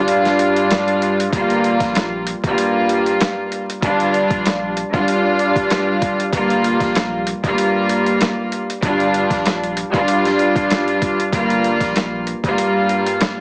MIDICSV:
0, 0, Header, 1, 4, 480
1, 0, Start_track
1, 0, Key_signature, -2, "minor"
1, 0, Tempo, 625000
1, 1018, Time_signature, 4, 2, 24, 8
1, 10295, End_track
2, 0, Start_track
2, 0, Title_t, "String section"
2, 0, Program_c, 0, 48
2, 0, Note_on_c, 0, 43, 103
2, 0, Note_on_c, 0, 55, 95
2, 0, Note_on_c, 0, 62, 98
2, 0, Note_on_c, 0, 65, 115
2, 934, Note_off_c, 0, 43, 0
2, 937, Note_off_c, 0, 55, 0
2, 939, Note_off_c, 0, 62, 0
2, 942, Note_off_c, 0, 65, 0
2, 1013, Note_on_c, 0, 43, 103
2, 1019, Note_on_c, 0, 55, 91
2, 1024, Note_on_c, 0, 58, 98
2, 1030, Note_on_c, 0, 65, 105
2, 1684, Note_off_c, 0, 43, 0
2, 1687, Note_off_c, 0, 55, 0
2, 1690, Note_off_c, 0, 58, 0
2, 1693, Note_off_c, 0, 65, 0
2, 1881, Note_on_c, 0, 43, 97
2, 1888, Note_on_c, 0, 55, 92
2, 1892, Note_on_c, 0, 58, 90
2, 1899, Note_on_c, 0, 65, 102
2, 2752, Note_off_c, 0, 43, 0
2, 2755, Note_off_c, 0, 55, 0
2, 2757, Note_off_c, 0, 58, 0
2, 2760, Note_off_c, 0, 65, 0
2, 2936, Note_on_c, 0, 43, 106
2, 2941, Note_on_c, 0, 55, 97
2, 2947, Note_on_c, 0, 62, 107
2, 2953, Note_on_c, 0, 65, 104
2, 3606, Note_off_c, 0, 43, 0
2, 3608, Note_off_c, 0, 55, 0
2, 3611, Note_off_c, 0, 62, 0
2, 3614, Note_off_c, 0, 65, 0
2, 3777, Note_on_c, 0, 43, 104
2, 3783, Note_on_c, 0, 55, 93
2, 3788, Note_on_c, 0, 62, 98
2, 3794, Note_on_c, 0, 65, 115
2, 4774, Note_off_c, 0, 43, 0
2, 4777, Note_off_c, 0, 55, 0
2, 4780, Note_off_c, 0, 62, 0
2, 4782, Note_off_c, 0, 65, 0
2, 4854, Note_on_c, 0, 43, 105
2, 4859, Note_on_c, 0, 55, 90
2, 4865, Note_on_c, 0, 58, 98
2, 4870, Note_on_c, 0, 65, 111
2, 5525, Note_off_c, 0, 43, 0
2, 5527, Note_off_c, 0, 55, 0
2, 5530, Note_off_c, 0, 58, 0
2, 5533, Note_off_c, 0, 65, 0
2, 5722, Note_on_c, 0, 43, 99
2, 5728, Note_on_c, 0, 55, 94
2, 5733, Note_on_c, 0, 58, 89
2, 5739, Note_on_c, 0, 65, 108
2, 6592, Note_off_c, 0, 43, 0
2, 6595, Note_off_c, 0, 55, 0
2, 6597, Note_off_c, 0, 58, 0
2, 6600, Note_off_c, 0, 65, 0
2, 6775, Note_on_c, 0, 43, 103
2, 6781, Note_on_c, 0, 55, 97
2, 6786, Note_on_c, 0, 62, 102
2, 6792, Note_on_c, 0, 65, 103
2, 7445, Note_off_c, 0, 43, 0
2, 7448, Note_off_c, 0, 55, 0
2, 7451, Note_off_c, 0, 62, 0
2, 7454, Note_off_c, 0, 65, 0
2, 7617, Note_on_c, 0, 43, 103
2, 7623, Note_on_c, 0, 55, 94
2, 7628, Note_on_c, 0, 62, 97
2, 7634, Note_on_c, 0, 65, 116
2, 8614, Note_off_c, 0, 43, 0
2, 8617, Note_off_c, 0, 55, 0
2, 8620, Note_off_c, 0, 62, 0
2, 8623, Note_off_c, 0, 65, 0
2, 8695, Note_on_c, 0, 43, 95
2, 8701, Note_on_c, 0, 55, 89
2, 8706, Note_on_c, 0, 58, 91
2, 8712, Note_on_c, 0, 65, 108
2, 9365, Note_off_c, 0, 43, 0
2, 9368, Note_off_c, 0, 55, 0
2, 9371, Note_off_c, 0, 58, 0
2, 9373, Note_off_c, 0, 65, 0
2, 9562, Note_on_c, 0, 43, 97
2, 9567, Note_on_c, 0, 55, 92
2, 9574, Note_on_c, 0, 58, 87
2, 9578, Note_on_c, 0, 65, 106
2, 10295, Note_off_c, 0, 43, 0
2, 10295, Note_off_c, 0, 55, 0
2, 10295, Note_off_c, 0, 58, 0
2, 10295, Note_off_c, 0, 65, 0
2, 10295, End_track
3, 0, Start_track
3, 0, Title_t, "Sub bass"
3, 0, Program_c, 1, 38
3, 1018, Note_on_c, 1, 31, 102
3, 1386, Note_on_c, 1, 34, 98
3, 1397, Note_off_c, 1, 31, 0
3, 1792, Note_off_c, 1, 34, 0
3, 1871, Note_on_c, 1, 31, 98
3, 1962, Note_off_c, 1, 31, 0
3, 2938, Note_on_c, 1, 31, 107
3, 3251, Note_off_c, 1, 31, 0
3, 3305, Note_on_c, 1, 34, 90
3, 3711, Note_off_c, 1, 34, 0
3, 3792, Note_on_c, 1, 31, 92
3, 3882, Note_off_c, 1, 31, 0
3, 4859, Note_on_c, 1, 31, 106
3, 5226, Note_on_c, 1, 34, 98
3, 5237, Note_off_c, 1, 31, 0
3, 5632, Note_off_c, 1, 34, 0
3, 5712, Note_on_c, 1, 31, 94
3, 5802, Note_off_c, 1, 31, 0
3, 6778, Note_on_c, 1, 31, 109
3, 7092, Note_off_c, 1, 31, 0
3, 7146, Note_on_c, 1, 34, 87
3, 7552, Note_off_c, 1, 34, 0
3, 7632, Note_on_c, 1, 31, 90
3, 7722, Note_off_c, 1, 31, 0
3, 8698, Note_on_c, 1, 31, 104
3, 9066, Note_on_c, 1, 34, 100
3, 9078, Note_off_c, 1, 31, 0
3, 9472, Note_off_c, 1, 34, 0
3, 9553, Note_on_c, 1, 31, 98
3, 9643, Note_off_c, 1, 31, 0
3, 10295, End_track
4, 0, Start_track
4, 0, Title_t, "Drums"
4, 61, Note_on_c, 9, 42, 105
4, 137, Note_off_c, 9, 42, 0
4, 195, Note_on_c, 9, 42, 37
4, 199, Note_on_c, 9, 38, 38
4, 271, Note_off_c, 9, 42, 0
4, 276, Note_off_c, 9, 38, 0
4, 301, Note_on_c, 9, 42, 72
4, 378, Note_off_c, 9, 42, 0
4, 433, Note_on_c, 9, 42, 57
4, 510, Note_off_c, 9, 42, 0
4, 541, Note_on_c, 9, 42, 90
4, 548, Note_on_c, 9, 38, 121
4, 556, Note_on_c, 9, 40, 101
4, 618, Note_off_c, 9, 42, 0
4, 625, Note_off_c, 9, 38, 0
4, 633, Note_off_c, 9, 40, 0
4, 674, Note_on_c, 9, 42, 37
4, 751, Note_off_c, 9, 42, 0
4, 784, Note_on_c, 9, 42, 75
4, 860, Note_off_c, 9, 42, 0
4, 921, Note_on_c, 9, 42, 63
4, 998, Note_off_c, 9, 42, 0
4, 1018, Note_on_c, 9, 36, 112
4, 1023, Note_on_c, 9, 42, 97
4, 1095, Note_off_c, 9, 36, 0
4, 1100, Note_off_c, 9, 42, 0
4, 1153, Note_on_c, 9, 42, 38
4, 1230, Note_off_c, 9, 42, 0
4, 1262, Note_on_c, 9, 42, 67
4, 1339, Note_off_c, 9, 42, 0
4, 1385, Note_on_c, 9, 36, 105
4, 1387, Note_on_c, 9, 42, 63
4, 1396, Note_on_c, 9, 38, 36
4, 1462, Note_off_c, 9, 36, 0
4, 1463, Note_off_c, 9, 42, 0
4, 1473, Note_off_c, 9, 38, 0
4, 1500, Note_on_c, 9, 42, 94
4, 1508, Note_on_c, 9, 38, 108
4, 1516, Note_on_c, 9, 40, 88
4, 1577, Note_off_c, 9, 42, 0
4, 1585, Note_off_c, 9, 38, 0
4, 1593, Note_off_c, 9, 40, 0
4, 1741, Note_on_c, 9, 42, 76
4, 1817, Note_off_c, 9, 42, 0
4, 1871, Note_on_c, 9, 36, 100
4, 1875, Note_on_c, 9, 42, 52
4, 1948, Note_off_c, 9, 36, 0
4, 1952, Note_off_c, 9, 42, 0
4, 1980, Note_on_c, 9, 42, 106
4, 2057, Note_off_c, 9, 42, 0
4, 2221, Note_on_c, 9, 42, 70
4, 2298, Note_off_c, 9, 42, 0
4, 2353, Note_on_c, 9, 42, 59
4, 2429, Note_off_c, 9, 42, 0
4, 2462, Note_on_c, 9, 42, 88
4, 2469, Note_on_c, 9, 38, 124
4, 2477, Note_on_c, 9, 40, 100
4, 2539, Note_off_c, 9, 42, 0
4, 2545, Note_off_c, 9, 38, 0
4, 2554, Note_off_c, 9, 40, 0
4, 2703, Note_on_c, 9, 42, 72
4, 2779, Note_off_c, 9, 42, 0
4, 2840, Note_on_c, 9, 42, 64
4, 2916, Note_off_c, 9, 42, 0
4, 2937, Note_on_c, 9, 36, 112
4, 2941, Note_on_c, 9, 42, 103
4, 3014, Note_off_c, 9, 36, 0
4, 3018, Note_off_c, 9, 42, 0
4, 3073, Note_on_c, 9, 42, 38
4, 3149, Note_off_c, 9, 42, 0
4, 3181, Note_on_c, 9, 42, 69
4, 3258, Note_off_c, 9, 42, 0
4, 3305, Note_on_c, 9, 36, 107
4, 3307, Note_on_c, 9, 42, 61
4, 3382, Note_off_c, 9, 36, 0
4, 3384, Note_off_c, 9, 42, 0
4, 3421, Note_on_c, 9, 42, 97
4, 3429, Note_on_c, 9, 38, 108
4, 3437, Note_on_c, 9, 40, 85
4, 3498, Note_off_c, 9, 42, 0
4, 3506, Note_off_c, 9, 38, 0
4, 3514, Note_off_c, 9, 40, 0
4, 3662, Note_on_c, 9, 42, 77
4, 3739, Note_off_c, 9, 42, 0
4, 3792, Note_on_c, 9, 36, 100
4, 3797, Note_on_c, 9, 42, 51
4, 3868, Note_off_c, 9, 36, 0
4, 3874, Note_off_c, 9, 42, 0
4, 3902, Note_on_c, 9, 42, 109
4, 3979, Note_off_c, 9, 42, 0
4, 4142, Note_on_c, 9, 42, 70
4, 4219, Note_off_c, 9, 42, 0
4, 4268, Note_on_c, 9, 36, 105
4, 4273, Note_on_c, 9, 42, 58
4, 4345, Note_off_c, 9, 36, 0
4, 4350, Note_off_c, 9, 42, 0
4, 4381, Note_on_c, 9, 42, 85
4, 4388, Note_on_c, 9, 38, 122
4, 4396, Note_on_c, 9, 40, 99
4, 4458, Note_off_c, 9, 42, 0
4, 4464, Note_off_c, 9, 38, 0
4, 4473, Note_off_c, 9, 40, 0
4, 4622, Note_on_c, 9, 36, 103
4, 4623, Note_on_c, 9, 42, 78
4, 4699, Note_off_c, 9, 36, 0
4, 4700, Note_off_c, 9, 42, 0
4, 4760, Note_on_c, 9, 42, 64
4, 4837, Note_off_c, 9, 42, 0
4, 4858, Note_on_c, 9, 36, 110
4, 4862, Note_on_c, 9, 42, 99
4, 4935, Note_off_c, 9, 36, 0
4, 4939, Note_off_c, 9, 42, 0
4, 4994, Note_on_c, 9, 42, 37
4, 5071, Note_off_c, 9, 42, 0
4, 5102, Note_on_c, 9, 42, 71
4, 5179, Note_off_c, 9, 42, 0
4, 5226, Note_on_c, 9, 36, 106
4, 5227, Note_on_c, 9, 42, 62
4, 5236, Note_on_c, 9, 38, 37
4, 5302, Note_off_c, 9, 36, 0
4, 5304, Note_off_c, 9, 42, 0
4, 5313, Note_off_c, 9, 38, 0
4, 5341, Note_on_c, 9, 42, 98
4, 5349, Note_on_c, 9, 38, 111
4, 5357, Note_on_c, 9, 40, 85
4, 5418, Note_off_c, 9, 42, 0
4, 5425, Note_off_c, 9, 38, 0
4, 5434, Note_off_c, 9, 40, 0
4, 5582, Note_on_c, 9, 42, 78
4, 5659, Note_off_c, 9, 42, 0
4, 5712, Note_on_c, 9, 36, 101
4, 5718, Note_on_c, 9, 42, 50
4, 5789, Note_off_c, 9, 36, 0
4, 5794, Note_off_c, 9, 42, 0
4, 5823, Note_on_c, 9, 42, 109
4, 5899, Note_off_c, 9, 42, 0
4, 6062, Note_on_c, 9, 42, 72
4, 6139, Note_off_c, 9, 42, 0
4, 6193, Note_on_c, 9, 42, 58
4, 6270, Note_off_c, 9, 42, 0
4, 6302, Note_on_c, 9, 42, 87
4, 6309, Note_on_c, 9, 38, 119
4, 6317, Note_on_c, 9, 40, 101
4, 6379, Note_off_c, 9, 42, 0
4, 6386, Note_off_c, 9, 38, 0
4, 6394, Note_off_c, 9, 40, 0
4, 6544, Note_on_c, 9, 42, 75
4, 6621, Note_off_c, 9, 42, 0
4, 6681, Note_on_c, 9, 42, 62
4, 6758, Note_off_c, 9, 42, 0
4, 6778, Note_on_c, 9, 36, 112
4, 6783, Note_on_c, 9, 42, 96
4, 6855, Note_off_c, 9, 36, 0
4, 6860, Note_off_c, 9, 42, 0
4, 6914, Note_on_c, 9, 42, 37
4, 6990, Note_off_c, 9, 42, 0
4, 7022, Note_on_c, 9, 42, 68
4, 7099, Note_off_c, 9, 42, 0
4, 7146, Note_on_c, 9, 36, 107
4, 7148, Note_on_c, 9, 42, 63
4, 7157, Note_on_c, 9, 38, 37
4, 7222, Note_off_c, 9, 36, 0
4, 7225, Note_off_c, 9, 42, 0
4, 7234, Note_off_c, 9, 38, 0
4, 7262, Note_on_c, 9, 42, 97
4, 7270, Note_on_c, 9, 38, 109
4, 7278, Note_on_c, 9, 40, 84
4, 7338, Note_off_c, 9, 42, 0
4, 7346, Note_off_c, 9, 38, 0
4, 7355, Note_off_c, 9, 40, 0
4, 7399, Note_on_c, 9, 42, 38
4, 7476, Note_off_c, 9, 42, 0
4, 7502, Note_on_c, 9, 42, 76
4, 7578, Note_off_c, 9, 42, 0
4, 7632, Note_on_c, 9, 36, 101
4, 7637, Note_on_c, 9, 42, 50
4, 7708, Note_off_c, 9, 36, 0
4, 7714, Note_off_c, 9, 42, 0
4, 7741, Note_on_c, 9, 42, 106
4, 7818, Note_off_c, 9, 42, 0
4, 7875, Note_on_c, 9, 42, 37
4, 7879, Note_on_c, 9, 38, 39
4, 7951, Note_off_c, 9, 42, 0
4, 7956, Note_off_c, 9, 38, 0
4, 7981, Note_on_c, 9, 42, 69
4, 8058, Note_off_c, 9, 42, 0
4, 8108, Note_on_c, 9, 36, 106
4, 8113, Note_on_c, 9, 42, 57
4, 8185, Note_off_c, 9, 36, 0
4, 8189, Note_off_c, 9, 42, 0
4, 8222, Note_on_c, 9, 42, 85
4, 8228, Note_on_c, 9, 38, 125
4, 8236, Note_on_c, 9, 40, 100
4, 8298, Note_off_c, 9, 42, 0
4, 8305, Note_off_c, 9, 38, 0
4, 8313, Note_off_c, 9, 40, 0
4, 8355, Note_on_c, 9, 42, 36
4, 8431, Note_off_c, 9, 42, 0
4, 8462, Note_on_c, 9, 36, 99
4, 8464, Note_on_c, 9, 42, 74
4, 8539, Note_off_c, 9, 36, 0
4, 8541, Note_off_c, 9, 42, 0
4, 8600, Note_on_c, 9, 42, 63
4, 8676, Note_off_c, 9, 42, 0
4, 8698, Note_on_c, 9, 36, 110
4, 8702, Note_on_c, 9, 42, 95
4, 8775, Note_off_c, 9, 36, 0
4, 8779, Note_off_c, 9, 42, 0
4, 8833, Note_on_c, 9, 42, 36
4, 8910, Note_off_c, 9, 42, 0
4, 8942, Note_on_c, 9, 42, 67
4, 9019, Note_off_c, 9, 42, 0
4, 9066, Note_on_c, 9, 36, 101
4, 9069, Note_on_c, 9, 42, 61
4, 9078, Note_on_c, 9, 38, 35
4, 9143, Note_off_c, 9, 36, 0
4, 9145, Note_off_c, 9, 42, 0
4, 9155, Note_off_c, 9, 38, 0
4, 9183, Note_on_c, 9, 42, 93
4, 9190, Note_on_c, 9, 38, 106
4, 9199, Note_on_c, 9, 40, 86
4, 9259, Note_off_c, 9, 42, 0
4, 9267, Note_off_c, 9, 38, 0
4, 9275, Note_off_c, 9, 40, 0
4, 9423, Note_on_c, 9, 42, 74
4, 9500, Note_off_c, 9, 42, 0
4, 9552, Note_on_c, 9, 36, 95
4, 9558, Note_on_c, 9, 42, 50
4, 9629, Note_off_c, 9, 36, 0
4, 9635, Note_off_c, 9, 42, 0
4, 9663, Note_on_c, 9, 42, 107
4, 9740, Note_off_c, 9, 42, 0
4, 9902, Note_on_c, 9, 42, 70
4, 9979, Note_off_c, 9, 42, 0
4, 10034, Note_on_c, 9, 42, 55
4, 10110, Note_off_c, 9, 42, 0
4, 10142, Note_on_c, 9, 42, 85
4, 10149, Note_on_c, 9, 38, 119
4, 10157, Note_on_c, 9, 40, 99
4, 10219, Note_off_c, 9, 42, 0
4, 10225, Note_off_c, 9, 38, 0
4, 10234, Note_off_c, 9, 40, 0
4, 10295, End_track
0, 0, End_of_file